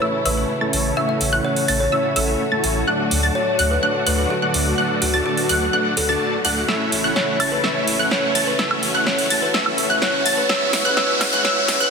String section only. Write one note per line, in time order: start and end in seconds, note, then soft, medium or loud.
0.00 2.84 C#3 medium
0.00 2.84 E3 medium
0.00 2.84 A3 medium
0.00 0.95 E4 medium
0.97 6.64 F#4 medium
2.87 6.65 D3 medium
2.87 6.65 F#3 medium
2.87 4.76 A3 medium
4.78 6.67 B3 medium
6.68 10.46 C#3 medium
6.68 11.90 E3 medium
6.68 10.46 A3 medium
6.68 8.57 E4 medium
8.59 11.90 F#4 medium
10.49 11.90 G#3 medium
10.49 11.90 B3 medium